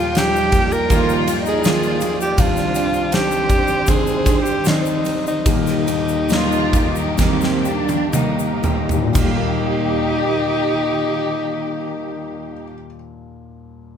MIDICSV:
0, 0, Header, 1, 7, 480
1, 0, Start_track
1, 0, Key_signature, -3, "major"
1, 0, Tempo, 743494
1, 1535, Time_signature, 4, 2, 24, 8
1, 2500, Tempo, 791557
1, 3460, Tempo, 841515
1, 3940, Tempo, 888889
1, 4420, Tempo, 950872
1, 4900, Tempo, 1030928
1, 7616, End_track
2, 0, Start_track
2, 0, Title_t, "Alto saxophone"
2, 0, Program_c, 0, 65
2, 0, Note_on_c, 0, 65, 112
2, 113, Note_on_c, 0, 67, 120
2, 123, Note_off_c, 0, 65, 0
2, 468, Note_on_c, 0, 70, 100
2, 478, Note_off_c, 0, 67, 0
2, 769, Note_off_c, 0, 70, 0
2, 952, Note_on_c, 0, 68, 104
2, 1398, Note_off_c, 0, 68, 0
2, 1430, Note_on_c, 0, 67, 98
2, 1548, Note_on_c, 0, 65, 102
2, 1558, Note_off_c, 0, 67, 0
2, 2026, Note_on_c, 0, 67, 111
2, 2036, Note_off_c, 0, 65, 0
2, 2511, Note_on_c, 0, 68, 100
2, 2520, Note_off_c, 0, 67, 0
2, 2831, Note_on_c, 0, 67, 85
2, 2840, Note_off_c, 0, 68, 0
2, 2988, Note_on_c, 0, 63, 86
2, 2997, Note_off_c, 0, 67, 0
2, 3345, Note_off_c, 0, 63, 0
2, 3349, Note_on_c, 0, 63, 92
2, 4886, Note_off_c, 0, 63, 0
2, 5376, Note_on_c, 0, 63, 102
2, 7048, Note_off_c, 0, 63, 0
2, 7616, End_track
3, 0, Start_track
3, 0, Title_t, "Cello section"
3, 0, Program_c, 1, 48
3, 577, Note_on_c, 1, 65, 111
3, 911, Note_off_c, 1, 65, 0
3, 939, Note_on_c, 1, 63, 102
3, 1058, Note_off_c, 1, 63, 0
3, 1061, Note_on_c, 1, 65, 102
3, 1418, Note_off_c, 1, 65, 0
3, 3949, Note_on_c, 1, 65, 109
3, 4280, Note_off_c, 1, 65, 0
3, 4306, Note_on_c, 1, 63, 91
3, 4423, Note_on_c, 1, 60, 93
3, 4424, Note_off_c, 1, 63, 0
3, 4655, Note_on_c, 1, 62, 110
3, 4658, Note_off_c, 1, 60, 0
3, 4901, Note_off_c, 1, 62, 0
3, 4902, Note_on_c, 1, 63, 84
3, 5356, Note_off_c, 1, 63, 0
3, 5375, Note_on_c, 1, 67, 93
3, 7047, Note_off_c, 1, 67, 0
3, 7616, End_track
4, 0, Start_track
4, 0, Title_t, "String section"
4, 0, Program_c, 2, 48
4, 0, Note_on_c, 2, 53, 74
4, 0, Note_on_c, 2, 74, 64
4, 0, Note_on_c, 2, 79, 81
4, 1511, Note_off_c, 2, 53, 0
4, 1512, Note_off_c, 2, 79, 0
4, 1537, Note_on_c, 2, 72, 88
4, 1539, Note_on_c, 2, 51, 76
4, 3439, Note_off_c, 2, 74, 0
4, 3444, Note_off_c, 2, 72, 0
4, 3462, Note_on_c, 2, 58, 62
4, 3463, Note_on_c, 2, 67, 85
4, 5357, Note_off_c, 2, 58, 0
4, 5358, Note_off_c, 2, 51, 0
4, 5358, Note_off_c, 2, 67, 0
4, 5371, Note_on_c, 2, 51, 76
4, 5371, Note_on_c, 2, 58, 70
4, 5372, Note_on_c, 2, 67, 85
4, 7042, Note_off_c, 2, 51, 0
4, 7043, Note_off_c, 2, 58, 0
4, 7044, Note_off_c, 2, 67, 0
4, 7616, End_track
5, 0, Start_track
5, 0, Title_t, "Steel-string acoustic guitar"
5, 0, Program_c, 3, 25
5, 0, Note_on_c, 3, 58, 47
5, 0, Note_on_c, 3, 65, 51
5, 0, Note_on_c, 3, 67, 59
5, 337, Note_off_c, 3, 67, 0
5, 338, Note_off_c, 3, 65, 0
5, 339, Note_on_c, 3, 67, 52
5, 345, Note_off_c, 3, 58, 0
5, 346, Note_on_c, 3, 65, 45
5, 352, Note_on_c, 3, 58, 40
5, 575, Note_off_c, 3, 58, 0
5, 578, Note_off_c, 3, 65, 0
5, 578, Note_off_c, 3, 67, 0
5, 579, Note_on_c, 3, 51, 81
5, 582, Note_on_c, 3, 58, 86
5, 586, Note_on_c, 3, 65, 85
5, 588, Note_on_c, 3, 67, 91
5, 809, Note_off_c, 3, 67, 0
5, 815, Note_off_c, 3, 65, 0
5, 816, Note_on_c, 3, 67, 66
5, 818, Note_off_c, 3, 51, 0
5, 819, Note_off_c, 3, 58, 0
5, 823, Note_on_c, 3, 65, 48
5, 828, Note_on_c, 3, 58, 48
5, 1055, Note_off_c, 3, 58, 0
5, 1057, Note_off_c, 3, 67, 0
5, 1058, Note_off_c, 3, 65, 0
5, 1058, Note_on_c, 3, 51, 64
5, 1063, Note_on_c, 3, 58, 62
5, 1066, Note_on_c, 3, 65, 68
5, 1293, Note_off_c, 3, 65, 0
5, 1295, Note_on_c, 3, 67, 51
5, 1297, Note_off_c, 3, 51, 0
5, 1300, Note_off_c, 3, 58, 0
5, 1301, Note_on_c, 3, 65, 49
5, 1307, Note_on_c, 3, 58, 43
5, 1534, Note_off_c, 3, 67, 0
5, 1537, Note_off_c, 3, 65, 0
5, 1538, Note_on_c, 3, 48, 81
5, 1540, Note_off_c, 3, 58, 0
5, 1541, Note_on_c, 3, 51, 72
5, 1544, Note_on_c, 3, 60, 74
5, 1545, Note_on_c, 3, 62, 90
5, 1546, Note_on_c, 3, 67, 77
5, 1765, Note_off_c, 3, 67, 0
5, 1773, Note_on_c, 3, 67, 64
5, 1775, Note_off_c, 3, 48, 0
5, 1775, Note_off_c, 3, 62, 0
5, 1777, Note_off_c, 3, 51, 0
5, 1778, Note_off_c, 3, 60, 0
5, 1783, Note_on_c, 3, 62, 57
5, 1787, Note_on_c, 3, 60, 49
5, 2252, Note_off_c, 3, 67, 0
5, 2253, Note_off_c, 3, 62, 0
5, 2254, Note_on_c, 3, 67, 43
5, 2259, Note_off_c, 3, 60, 0
5, 2261, Note_on_c, 3, 62, 45
5, 2267, Note_on_c, 3, 60, 43
5, 2497, Note_off_c, 3, 60, 0
5, 2500, Note_off_c, 3, 67, 0
5, 2500, Note_on_c, 3, 48, 74
5, 2501, Note_off_c, 3, 62, 0
5, 2502, Note_on_c, 3, 51, 79
5, 2504, Note_on_c, 3, 60, 85
5, 2508, Note_on_c, 3, 62, 92
5, 2732, Note_off_c, 3, 62, 0
5, 2732, Note_on_c, 3, 67, 62
5, 2734, Note_off_c, 3, 48, 0
5, 2735, Note_off_c, 3, 51, 0
5, 2736, Note_off_c, 3, 60, 0
5, 2739, Note_on_c, 3, 62, 51
5, 2744, Note_on_c, 3, 60, 50
5, 2970, Note_off_c, 3, 60, 0
5, 2970, Note_on_c, 3, 51, 60
5, 2972, Note_off_c, 3, 67, 0
5, 2975, Note_off_c, 3, 62, 0
5, 2977, Note_on_c, 3, 60, 61
5, 2983, Note_on_c, 3, 67, 62
5, 3456, Note_off_c, 3, 51, 0
5, 3459, Note_on_c, 3, 51, 80
5, 3460, Note_off_c, 3, 60, 0
5, 3462, Note_on_c, 3, 58, 75
5, 3462, Note_on_c, 3, 63, 80
5, 3464, Note_off_c, 3, 67, 0
5, 3466, Note_on_c, 3, 67, 80
5, 3688, Note_off_c, 3, 67, 0
5, 3693, Note_off_c, 3, 63, 0
5, 3695, Note_on_c, 3, 67, 62
5, 3697, Note_off_c, 3, 51, 0
5, 3699, Note_off_c, 3, 58, 0
5, 3700, Note_on_c, 3, 63, 51
5, 3705, Note_on_c, 3, 58, 47
5, 4175, Note_off_c, 3, 67, 0
5, 4177, Note_on_c, 3, 67, 52
5, 4181, Note_off_c, 3, 63, 0
5, 4183, Note_on_c, 3, 63, 46
5, 4185, Note_off_c, 3, 58, 0
5, 4188, Note_on_c, 3, 58, 45
5, 4419, Note_off_c, 3, 58, 0
5, 4420, Note_off_c, 3, 63, 0
5, 4421, Note_off_c, 3, 67, 0
5, 4422, Note_on_c, 3, 51, 84
5, 4425, Note_on_c, 3, 58, 86
5, 4426, Note_on_c, 3, 63, 101
5, 4427, Note_on_c, 3, 67, 106
5, 4649, Note_off_c, 3, 67, 0
5, 4655, Note_on_c, 3, 67, 66
5, 4657, Note_off_c, 3, 51, 0
5, 4659, Note_off_c, 3, 58, 0
5, 4659, Note_off_c, 3, 63, 0
5, 4666, Note_on_c, 3, 58, 47
5, 4897, Note_off_c, 3, 58, 0
5, 4898, Note_on_c, 3, 51, 55
5, 4900, Note_off_c, 3, 67, 0
5, 4903, Note_on_c, 3, 58, 70
5, 4905, Note_on_c, 3, 63, 66
5, 4908, Note_on_c, 3, 67, 69
5, 5129, Note_off_c, 3, 67, 0
5, 5133, Note_off_c, 3, 51, 0
5, 5134, Note_off_c, 3, 63, 0
5, 5134, Note_on_c, 3, 67, 56
5, 5135, Note_off_c, 3, 58, 0
5, 5140, Note_on_c, 3, 63, 54
5, 5144, Note_on_c, 3, 58, 49
5, 5363, Note_on_c, 3, 51, 81
5, 5371, Note_off_c, 3, 58, 0
5, 5375, Note_off_c, 3, 67, 0
5, 5377, Note_off_c, 3, 63, 0
5, 5377, Note_on_c, 3, 58, 81
5, 5386, Note_on_c, 3, 63, 76
5, 5396, Note_on_c, 3, 67, 93
5, 7054, Note_off_c, 3, 51, 0
5, 7067, Note_off_c, 3, 58, 0
5, 7076, Note_off_c, 3, 63, 0
5, 7086, Note_off_c, 3, 67, 0
5, 7616, End_track
6, 0, Start_track
6, 0, Title_t, "Felt piano"
6, 0, Program_c, 4, 0
6, 0, Control_c, 4, 64, 127
6, 0, Note_on_c, 4, 27, 69
6, 0, Note_on_c, 4, 39, 77
6, 0, Note_on_c, 4, 53, 43
6, 0, Note_on_c, 4, 55, 43
6, 0, Note_on_c, 4, 63, 51
6, 104, Note_off_c, 4, 53, 0
6, 104, Note_on_c, 4, 53, 57
6, 105, Note_off_c, 4, 55, 0
6, 105, Note_on_c, 4, 55, 49
6, 108, Note_off_c, 4, 63, 0
6, 108, Note_on_c, 4, 63, 63
6, 566, Note_off_c, 4, 53, 0
6, 567, Note_off_c, 4, 55, 0
6, 569, Note_off_c, 4, 63, 0
6, 581, Note_on_c, 4, 53, 52
6, 585, Note_on_c, 4, 55, 51
6, 586, Note_on_c, 4, 63, 60
6, 1044, Note_off_c, 4, 53, 0
6, 1046, Note_off_c, 4, 55, 0
6, 1047, Note_off_c, 4, 63, 0
6, 1062, Note_on_c, 4, 53, 53
6, 1064, Note_on_c, 4, 58, 49
6, 1066, Note_on_c, 4, 63, 61
6, 1516, Note_off_c, 4, 27, 0
6, 1516, Note_off_c, 4, 39, 0
6, 1523, Note_off_c, 4, 53, 0
6, 1524, Note_off_c, 4, 58, 0
6, 1526, Note_off_c, 4, 63, 0
6, 1542, Note_on_c, 4, 36, 79
6, 1543, Control_c, 4, 64, 0
6, 1646, Control_c, 4, 64, 127
6, 2015, Note_on_c, 4, 51, 56
6, 2019, Note_on_c, 4, 60, 49
6, 2020, Note_on_c, 4, 62, 56
6, 2487, Note_off_c, 4, 51, 0
6, 2489, Note_off_c, 4, 60, 0
6, 2490, Note_off_c, 4, 62, 0
6, 2501, Note_on_c, 4, 51, 46
6, 2503, Note_on_c, 4, 60, 46
6, 2504, Note_on_c, 4, 62, 55
6, 2958, Note_off_c, 4, 51, 0
6, 2959, Note_off_c, 4, 60, 0
6, 2960, Note_off_c, 4, 62, 0
6, 2974, Note_on_c, 4, 60, 47
6, 2975, Note_on_c, 4, 51, 50
6, 2978, Note_on_c, 4, 74, 53
6, 3441, Note_off_c, 4, 36, 0
6, 3448, Note_off_c, 4, 51, 0
6, 3448, Note_off_c, 4, 60, 0
6, 3450, Note_off_c, 4, 74, 0
6, 3461, Note_on_c, 4, 27, 70
6, 3462, Note_on_c, 4, 39, 70
6, 3468, Control_c, 4, 64, 0
6, 3573, Control_c, 4, 64, 127
6, 3939, Note_on_c, 4, 55, 50
6, 3939, Note_on_c, 4, 58, 46
6, 3942, Note_on_c, 4, 63, 56
6, 4403, Note_off_c, 4, 55, 0
6, 4405, Note_off_c, 4, 58, 0
6, 4407, Note_off_c, 4, 63, 0
6, 4411, Note_on_c, 4, 55, 49
6, 4417, Note_on_c, 4, 51, 50
6, 4417, Note_on_c, 4, 58, 44
6, 4882, Note_off_c, 4, 55, 0
6, 4885, Note_off_c, 4, 51, 0
6, 4885, Note_off_c, 4, 58, 0
6, 4900, Note_on_c, 4, 55, 46
6, 4900, Note_on_c, 4, 58, 45
6, 4903, Note_on_c, 4, 63, 52
6, 5265, Note_off_c, 4, 39, 0
6, 5272, Note_on_c, 4, 39, 64
6, 5321, Note_on_c, 4, 46, 56
6, 5356, Note_off_c, 4, 27, 0
6, 5360, Note_off_c, 4, 55, 0
6, 5360, Note_off_c, 4, 58, 0
6, 5361, Note_off_c, 4, 63, 0
6, 5371, Note_on_c, 4, 51, 51
6, 5381, Control_c, 4, 64, 0
6, 5421, Note_on_c, 4, 55, 52
6, 5468, Control_c, 4, 64, 127
6, 5470, Note_on_c, 4, 58, 70
6, 6944, Note_off_c, 4, 39, 0
6, 6992, Note_off_c, 4, 46, 0
6, 7043, Note_off_c, 4, 51, 0
6, 7093, Note_off_c, 4, 55, 0
6, 7142, Note_off_c, 4, 58, 0
6, 7616, End_track
7, 0, Start_track
7, 0, Title_t, "Drums"
7, 97, Note_on_c, 9, 51, 70
7, 107, Note_on_c, 9, 82, 62
7, 108, Note_on_c, 9, 38, 112
7, 161, Note_off_c, 9, 51, 0
7, 172, Note_off_c, 9, 82, 0
7, 173, Note_off_c, 9, 38, 0
7, 233, Note_on_c, 9, 82, 50
7, 297, Note_off_c, 9, 82, 0
7, 336, Note_on_c, 9, 51, 62
7, 339, Note_on_c, 9, 36, 96
7, 347, Note_on_c, 9, 82, 46
7, 400, Note_off_c, 9, 51, 0
7, 404, Note_off_c, 9, 36, 0
7, 411, Note_off_c, 9, 82, 0
7, 463, Note_on_c, 9, 82, 47
7, 528, Note_off_c, 9, 82, 0
7, 580, Note_on_c, 9, 51, 62
7, 582, Note_on_c, 9, 36, 91
7, 587, Note_on_c, 9, 82, 73
7, 645, Note_off_c, 9, 51, 0
7, 647, Note_off_c, 9, 36, 0
7, 652, Note_off_c, 9, 82, 0
7, 705, Note_on_c, 9, 82, 49
7, 770, Note_off_c, 9, 82, 0
7, 823, Note_on_c, 9, 51, 70
7, 825, Note_on_c, 9, 82, 54
7, 888, Note_off_c, 9, 51, 0
7, 890, Note_off_c, 9, 82, 0
7, 942, Note_on_c, 9, 82, 42
7, 1007, Note_off_c, 9, 82, 0
7, 1057, Note_on_c, 9, 82, 76
7, 1066, Note_on_c, 9, 51, 76
7, 1071, Note_on_c, 9, 38, 121
7, 1122, Note_off_c, 9, 82, 0
7, 1131, Note_off_c, 9, 51, 0
7, 1136, Note_off_c, 9, 38, 0
7, 1181, Note_on_c, 9, 82, 44
7, 1245, Note_off_c, 9, 82, 0
7, 1294, Note_on_c, 9, 82, 47
7, 1303, Note_on_c, 9, 51, 65
7, 1359, Note_off_c, 9, 82, 0
7, 1367, Note_off_c, 9, 51, 0
7, 1426, Note_on_c, 9, 82, 51
7, 1490, Note_off_c, 9, 82, 0
7, 1535, Note_on_c, 9, 82, 69
7, 1537, Note_on_c, 9, 36, 108
7, 1537, Note_on_c, 9, 51, 77
7, 1600, Note_off_c, 9, 82, 0
7, 1601, Note_off_c, 9, 51, 0
7, 1602, Note_off_c, 9, 36, 0
7, 1657, Note_on_c, 9, 82, 52
7, 1665, Note_on_c, 9, 38, 35
7, 1721, Note_off_c, 9, 82, 0
7, 1729, Note_off_c, 9, 38, 0
7, 1773, Note_on_c, 9, 82, 62
7, 1781, Note_on_c, 9, 51, 59
7, 1838, Note_off_c, 9, 82, 0
7, 1846, Note_off_c, 9, 51, 0
7, 1895, Note_on_c, 9, 82, 46
7, 1960, Note_off_c, 9, 82, 0
7, 2015, Note_on_c, 9, 51, 78
7, 2016, Note_on_c, 9, 82, 61
7, 2027, Note_on_c, 9, 38, 113
7, 2080, Note_off_c, 9, 51, 0
7, 2081, Note_off_c, 9, 82, 0
7, 2091, Note_off_c, 9, 38, 0
7, 2139, Note_on_c, 9, 82, 45
7, 2204, Note_off_c, 9, 82, 0
7, 2256, Note_on_c, 9, 51, 57
7, 2257, Note_on_c, 9, 36, 94
7, 2258, Note_on_c, 9, 82, 54
7, 2321, Note_off_c, 9, 36, 0
7, 2321, Note_off_c, 9, 51, 0
7, 2323, Note_off_c, 9, 82, 0
7, 2373, Note_on_c, 9, 82, 46
7, 2438, Note_off_c, 9, 82, 0
7, 2495, Note_on_c, 9, 82, 64
7, 2505, Note_on_c, 9, 36, 95
7, 2505, Note_on_c, 9, 51, 66
7, 2556, Note_off_c, 9, 82, 0
7, 2566, Note_off_c, 9, 36, 0
7, 2566, Note_off_c, 9, 51, 0
7, 2618, Note_on_c, 9, 82, 48
7, 2679, Note_off_c, 9, 82, 0
7, 2735, Note_on_c, 9, 82, 54
7, 2736, Note_on_c, 9, 36, 96
7, 2737, Note_on_c, 9, 51, 61
7, 2796, Note_off_c, 9, 36, 0
7, 2796, Note_off_c, 9, 82, 0
7, 2798, Note_off_c, 9, 51, 0
7, 2855, Note_on_c, 9, 82, 45
7, 2916, Note_off_c, 9, 82, 0
7, 2969, Note_on_c, 9, 82, 69
7, 2979, Note_on_c, 9, 51, 75
7, 2984, Note_on_c, 9, 38, 109
7, 3029, Note_off_c, 9, 82, 0
7, 3040, Note_off_c, 9, 51, 0
7, 3044, Note_off_c, 9, 38, 0
7, 3096, Note_on_c, 9, 82, 46
7, 3157, Note_off_c, 9, 82, 0
7, 3212, Note_on_c, 9, 82, 50
7, 3221, Note_on_c, 9, 51, 62
7, 3273, Note_off_c, 9, 82, 0
7, 3281, Note_off_c, 9, 51, 0
7, 3346, Note_on_c, 9, 82, 51
7, 3407, Note_off_c, 9, 82, 0
7, 3462, Note_on_c, 9, 36, 106
7, 3462, Note_on_c, 9, 51, 84
7, 3463, Note_on_c, 9, 82, 80
7, 3519, Note_off_c, 9, 36, 0
7, 3519, Note_off_c, 9, 51, 0
7, 3520, Note_off_c, 9, 82, 0
7, 3580, Note_on_c, 9, 82, 55
7, 3586, Note_on_c, 9, 38, 38
7, 3638, Note_off_c, 9, 82, 0
7, 3643, Note_off_c, 9, 38, 0
7, 3699, Note_on_c, 9, 82, 55
7, 3701, Note_on_c, 9, 51, 56
7, 3756, Note_off_c, 9, 82, 0
7, 3758, Note_off_c, 9, 51, 0
7, 3819, Note_on_c, 9, 82, 46
7, 3876, Note_off_c, 9, 82, 0
7, 3936, Note_on_c, 9, 82, 60
7, 3942, Note_on_c, 9, 51, 75
7, 3952, Note_on_c, 9, 38, 112
7, 3990, Note_off_c, 9, 82, 0
7, 3996, Note_off_c, 9, 51, 0
7, 4006, Note_off_c, 9, 38, 0
7, 4061, Note_on_c, 9, 82, 50
7, 4115, Note_off_c, 9, 82, 0
7, 4175, Note_on_c, 9, 36, 89
7, 4176, Note_on_c, 9, 51, 60
7, 4181, Note_on_c, 9, 82, 49
7, 4229, Note_off_c, 9, 36, 0
7, 4230, Note_off_c, 9, 51, 0
7, 4235, Note_off_c, 9, 82, 0
7, 4296, Note_on_c, 9, 82, 48
7, 4350, Note_off_c, 9, 82, 0
7, 4416, Note_on_c, 9, 82, 63
7, 4421, Note_on_c, 9, 36, 83
7, 4427, Note_on_c, 9, 38, 56
7, 4467, Note_off_c, 9, 82, 0
7, 4472, Note_off_c, 9, 36, 0
7, 4477, Note_off_c, 9, 38, 0
7, 4533, Note_on_c, 9, 82, 50
7, 4545, Note_on_c, 9, 38, 61
7, 4584, Note_off_c, 9, 82, 0
7, 4595, Note_off_c, 9, 38, 0
7, 4654, Note_on_c, 9, 82, 52
7, 4704, Note_off_c, 9, 82, 0
7, 4773, Note_on_c, 9, 82, 41
7, 4775, Note_on_c, 9, 48, 73
7, 4824, Note_off_c, 9, 82, 0
7, 4826, Note_off_c, 9, 48, 0
7, 4897, Note_on_c, 9, 82, 69
7, 4898, Note_on_c, 9, 47, 98
7, 4944, Note_off_c, 9, 82, 0
7, 4945, Note_off_c, 9, 47, 0
7, 5018, Note_on_c, 9, 82, 45
7, 5065, Note_off_c, 9, 82, 0
7, 5131, Note_on_c, 9, 82, 43
7, 5133, Note_on_c, 9, 43, 106
7, 5177, Note_off_c, 9, 82, 0
7, 5180, Note_off_c, 9, 43, 0
7, 5252, Note_on_c, 9, 43, 89
7, 5260, Note_on_c, 9, 82, 51
7, 5299, Note_off_c, 9, 43, 0
7, 5307, Note_off_c, 9, 82, 0
7, 5371, Note_on_c, 9, 82, 86
7, 5373, Note_on_c, 9, 36, 100
7, 5374, Note_on_c, 9, 43, 99
7, 5374, Note_on_c, 9, 49, 79
7, 5418, Note_off_c, 9, 82, 0
7, 5419, Note_off_c, 9, 36, 0
7, 5420, Note_off_c, 9, 43, 0
7, 5420, Note_off_c, 9, 49, 0
7, 7616, End_track
0, 0, End_of_file